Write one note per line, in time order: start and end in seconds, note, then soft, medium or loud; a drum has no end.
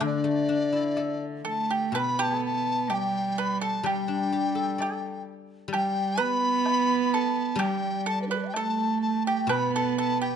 0.00 2.90 D3 medium
0.00 1.45 D3 medium
0.00 1.42 D4 medium
0.00 high woodblock medium
0.06 1.25 D5 medium
0.24 2.18 A3 soft
0.49 2.42 D4 soft
0.72 2.66 E4 soft
0.97 2.90 A4 soft
0.97 low woodblock soft
1.45 1.95 A3 medium
1.45 1.68 A4 medium
1.50 1.75 A5 medium
1.71 1.93 G4 medium
1.71 1.99 G5 medium
1.92 4.78 B2 medium
1.92 2.92 B3 medium
1.92 2.17 B4 medium
1.92 high woodblock medium
1.98 2.23 B5 loud
2.19 2.39 G4 medium
2.19 2.44 A5 loud
2.39 2.87 A4 medium
2.46 2.95 A5 medium
2.90 3.85 G3 medium
2.90 3.34 G4 medium
2.90 high woodblock soft
2.90 low woodblock soft
2.94 3.41 G5 loud
3.38 3.60 B4 medium
3.38 3.61 B5 medium
3.61 3.84 A4 medium
3.61 3.84 A5 medium
3.83 5.67 G3 medium
3.83 5.22 G3 medium
3.83 4.76 G4 medium
3.83 5.23 G5 loud
3.83 high woodblock medium
4.08 5.95 D4 soft
4.32 6.19 G4 soft
4.55 6.42 A4 soft
4.78 5.24 A4 medium
4.78 6.65 D5 soft
4.78 high woodblock soft
4.78 low woodblock soft
5.68 7.54 G3 medium
5.73 6.21 G3 medium
5.73 6.16 G4 medium
5.73 high woodblock medium
5.77 6.23 G5 loud
6.18 7.59 B3 loud
6.18 7.08 B4 loud
6.22 7.15 B5 loud
6.66 high woodblock medium
6.66 low woodblock medium
7.14 7.57 A4 medium
7.14 7.64 A5 medium
7.55 10.36 G3 medium
7.55 8.54 G3 medium
7.55 8.03 G4 medium
7.60 8.08 G5 loud
7.60 high woodblock medium
8.06 8.28 A4 medium
8.06 8.21 A5 medium
8.22 8.27 B4 soft
8.27 8.29 D4 soft
8.27 8.52 B4 medium
8.27 8.32 B5 medium
8.33 8.36 G4 medium
8.33 8.38 A4 medium
8.39 8.42 B4 medium
8.39 8.45 D5 medium
8.44 8.48 E5 medium
8.48 8.55 G5 medium
8.53 9.51 A3 medium
8.53 9.23 A4 medium
8.53 9.01 A5 medium
8.53 high woodblock medium
8.53 low woodblock medium
9.02 9.24 A5 medium
9.26 9.49 G4 medium
9.26 9.48 G5 medium
9.47 10.36 B2 medium
9.47 10.36 B3 medium
9.47 9.72 B4 medium
9.47 high woodblock medium
9.52 9.74 B5 medium
9.75 9.97 A4 medium
9.75 9.97 A5 medium
9.98 10.20 A4 medium
9.98 10.20 A5 loud
10.21 10.36 G4 medium
10.21 10.36 G5 medium